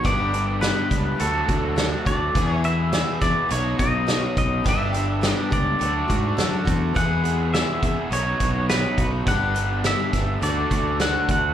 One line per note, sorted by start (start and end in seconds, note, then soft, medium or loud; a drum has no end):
0.04 0.71 G1 medium
0.04 0.33 G2 medium
0.04 0.33 D3 medium
0.04 0.33 G3 medium
0.04 0.33 B3 medium
0.04 0.32 D4 medium
0.04 0.31 G4 medium
0.04 0.59 D5 medium
0.04 kick medium
0.04 closed hi-hat medium
0.32 0.61 G3 soft
0.32 0.62 B3 soft
0.32 0.62 D4 medium
0.32 0.62 G4 soft
0.32 closed hi-hat medium
0.61 0.90 G2 medium
0.61 0.90 D3 medium
0.61 0.91 G3 medium
0.61 0.91 B3 medium
0.61 0.90 D4 medium
0.61 0.89 G4 medium
0.61 1.21 B4 medium
0.61 snare loud
0.61 closed hi-hat medium
0.90 1.13 C#2 medium
0.90 1.19 G3 soft
0.90 1.20 B3 soft
0.90 1.20 D4 soft
0.90 1.19 G4 soft
0.90 kick medium
0.90 closed hi-hat medium
1.19 1.42 D2 medium
1.19 2.33 D3 medium
1.19 1.49 F#3 medium
1.19 1.49 A3 medium
1.19 1.48 D4 medium
1.19 1.47 F#4 medium
1.19 2.09 A4 medium
1.19 closed hi-hat medium
1.48 1.93 D2 medium
1.48 1.76 A3 soft
1.48 1.77 D4 soft
1.48 1.77 F#4 soft
1.48 kick medium
1.48 closed hi-hat soft
1.76 2.06 D3 medium
1.76 2.06 F#3 medium
1.76 2.06 A3 medium
1.76 2.06 D4 medium
1.76 2.04 F#4 medium
1.76 snare loud
1.76 closed hi-hat medium
2.05 2.28 D2 medium
2.05 2.35 A3 soft
2.05 2.36 D4 soft
2.05 2.35 F#4 soft
2.05 2.50 D5 medium
2.05 kick medium
2.05 closed hi-hat medium
2.34 3.48 E2 medium
2.34 3.01 E2 loud
2.34 3.48 B2 medium
2.34 2.64 E3 medium
2.34 2.64 B3 medium
2.34 2.64 E4 medium
2.34 2.63 G#4 medium
2.34 kick medium
2.34 closed hi-hat medium
2.50 2.65 C#5 medium
2.64 2.92 B3 soft
2.64 2.93 E4 medium
2.64 2.93 G#4 medium
2.64 3.21 E5 medium
2.64 closed hi-hat medium
2.92 3.21 E3 medium
2.92 3.22 B3 medium
2.92 3.21 E4 medium
2.92 3.20 G#4 medium
2.92 snare loud
2.92 closed hi-hat medium
3.21 3.33 E2 medium
3.21 3.50 B3 soft
3.21 3.51 E4 soft
3.21 3.50 G#4 soft
3.21 3.51 D5 medium
3.21 kick medium
3.21 snare soft
3.21 closed hi-hat medium
3.49 3.73 B1 loud
3.49 4.63 B2 medium
3.49 3.78 F#3 medium
3.49 4.64 B3 medium
3.49 3.79 C#4 medium
3.49 3.79 D#4 medium
3.49 3.77 F#4 medium
3.49 3.79 C#5 medium
3.49 closed hi-hat medium
3.78 4.23 B1 medium
3.78 4.06 C#4 soft
3.78 4.07 D#4 soft
3.78 4.07 F#4 medium
3.78 4.37 D#5 medium
3.78 kick medium
3.78 closed hi-hat medium
4.07 4.36 B2 medium
4.07 4.36 F#3 medium
4.07 4.37 C#4 medium
4.07 4.36 D#4 medium
4.07 4.34 F#4 medium
4.07 snare medium
4.07 closed hi-hat medium
4.35 4.66 B1 medium
4.35 4.66 C#4 soft
4.35 4.66 D#4 soft
4.35 4.65 F#4 soft
4.35 4.67 D#5 medium
4.35 kick medium
4.35 closed hi-hat medium
4.64 5.32 G1 medium
4.64 4.94 G2 medium
4.64 4.94 D3 medium
4.64 4.94 G3 medium
4.64 4.94 B3 medium
4.64 4.93 D4 medium
4.64 4.92 G4 medium
4.64 kick medium
4.64 closed hi-hat medium
4.69 5.32 E5 medium
4.93 5.21 G3 soft
4.93 5.22 B3 soft
4.93 5.22 D4 medium
4.93 5.22 G4 medium
4.93 closed hi-hat medium
5.21 5.51 G2 medium
5.21 5.52 D3 medium
5.21 5.52 G3 medium
5.21 5.51 B3 medium
5.21 5.50 D4 medium
5.21 5.49 G4 medium
5.21 snare loud
5.21 closed hi-hat medium
5.32 5.53 D5 medium
5.50 5.74 C#2 medium
5.50 5.79 G3 soft
5.50 5.80 B3 soft
5.50 5.80 D4 soft
5.50 5.80 G4 soft
5.50 6.35 D5 medium
5.50 kick medium
5.50 closed hi-hat medium
5.79 6.03 D2 medium
5.79 6.94 D3 medium
5.79 6.09 F#3 medium
5.79 6.09 A3 medium
5.79 6.08 D4 medium
5.79 6.07 F#4 medium
5.79 closed hi-hat medium
6.08 6.36 G#2 medium
6.08 6.37 A3 soft
6.08 6.38 D4 soft
6.08 6.38 F#4 soft
6.08 kick medium
6.08 closed hi-hat medium
6.37 6.64 F#2 medium
6.37 6.67 D3 medium
6.37 6.67 F#3 medium
6.37 6.67 A3 medium
6.37 6.66 D4 medium
6.37 6.64 F#4 medium
6.37 snare loud
6.37 closed hi-hat medium
6.65 6.93 E2 medium
6.65 6.95 A3 soft
6.65 6.95 D4 soft
6.65 6.95 F#4 medium
6.65 kick medium
6.65 closed hi-hat medium
6.94 8.09 E2 medium
6.94 7.62 E2 loud
6.94 8.09 B2 medium
6.94 7.24 E3 medium
6.94 8.10 G#3 medium
6.94 7.25 B3 medium
6.94 7.24 E4 medium
6.94 7.23 G#4 medium
6.94 7.53 F#5 medium
6.94 kick medium
6.94 closed hi-hat medium
7.24 7.53 B3 soft
7.24 7.54 E4 soft
7.24 7.53 G#4 medium
7.24 closed hi-hat medium
7.53 7.83 E3 medium
7.53 7.83 B3 medium
7.53 7.83 E4 medium
7.53 7.81 G#4 medium
7.53 8.13 E5 medium
7.53 snare loud
7.53 closed hi-hat medium
7.82 7.94 E2 medium
7.82 8.12 B3 soft
7.82 8.12 E4 soft
7.82 8.11 G#4 medium
7.82 kick medium
7.82 closed hi-hat medium
8.10 8.33 B1 medium
8.10 9.24 B2 medium
8.10 8.40 F#3 medium
8.10 9.25 B3 medium
8.10 8.41 C#4 medium
8.10 8.40 D#4 medium
8.10 8.39 F#4 medium
8.10 8.66 C#5 medium
8.10 closed hi-hat medium
8.40 8.84 B1 medium
8.40 8.69 C#4 soft
8.40 8.69 D#4 soft
8.40 8.69 F#4 soft
8.40 kick medium
8.40 closed hi-hat medium
8.69 8.98 B2 medium
8.69 8.98 F#3 medium
8.69 8.99 C#4 medium
8.69 8.98 D#4 medium
8.69 8.96 F#4 medium
8.69 9.10 B4 medium
8.69 snare loud
8.69 closed hi-hat medium
8.98 9.27 B1 medium
8.98 9.28 C#4 soft
8.98 9.27 D#4 soft
8.98 9.27 F#4 soft
8.98 kick medium
8.98 closed hi-hat medium
9.26 9.93 G1 loud
9.26 9.56 G2 medium
9.26 9.56 D3 medium
9.26 9.56 G3 medium
9.26 9.55 B3 medium
9.26 9.55 D4 medium
9.26 9.53 G4 medium
9.26 9.86 F#5 medium
9.26 kick medium
9.26 closed hi-hat medium
9.55 9.84 G3 soft
9.55 9.84 B3 soft
9.55 9.85 D4 medium
9.55 9.84 G4 medium
9.55 closed hi-hat medium
9.84 10.13 G2 medium
9.84 10.13 D3 medium
9.84 10.14 G3 medium
9.84 10.14 B3 medium
9.84 10.13 D4 medium
9.84 10.12 G4 medium
9.84 10.45 E5 medium
9.84 snare loud
9.84 closed hi-hat medium
10.13 10.35 G1 medium
10.13 10.41 G3 soft
10.13 10.42 B3 soft
10.13 10.43 D4 soft
10.13 10.42 G4 soft
10.13 kick medium
10.13 snare soft
10.13 closed hi-hat medium
10.40 10.64 D2 loud
10.40 11.54 D3 medium
10.40 10.71 F#3 medium
10.40 10.71 A3 medium
10.40 10.70 D4 medium
10.40 10.97 D5 medium
10.40 closed hi-hat medium
10.45 10.69 F#4 medium
10.70 11.15 D2 medium
10.70 11.00 A3 soft
10.70 11.00 D4 soft
10.70 11.00 F#4 soft
10.70 kick medium
10.70 closed hi-hat medium
11.00 11.29 D3 medium
11.00 11.29 F#3 medium
11.00 11.29 A3 medium
11.00 11.28 D4 medium
11.00 11.27 F#4 medium
11.00 11.30 F#5 medium
11.00 snare loud
11.00 closed hi-hat medium
11.28 11.51 D2 loud
11.28 11.54 A3 soft
11.28 11.54 D4 soft
11.28 11.54 F#4 medium
11.28 11.54 F#5 medium
11.28 kick medium
11.28 closed hi-hat medium